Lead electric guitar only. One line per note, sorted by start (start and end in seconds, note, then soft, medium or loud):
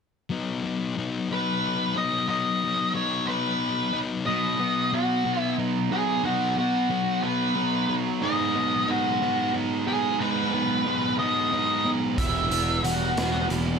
1.32 1.93 B4 medium
1.97 2.28 D#5 medium
2.29 2.95 D#5 medium
2.95 3.29 C#5 medium
3.27 3.98 B4 medium
4.26 4.94 D#5 medium
4.94 5.41 F#4 medium
5.41 5.55 E4 medium
5.92 6.25 G#4 medium
6.25 6.57 F#4 medium
6.58 7.26 F#4 medium
7.23 7.93 B4 medium
8.22 8.90 D#5 medium
8.90 9.51 F#4 medium
9.87 10.21 G#4 medium
10.19 11.15 B4 medium
11.19 11.89 D#5 medium
12.18 12.80 E5 medium
12.84 13.46 F#4 medium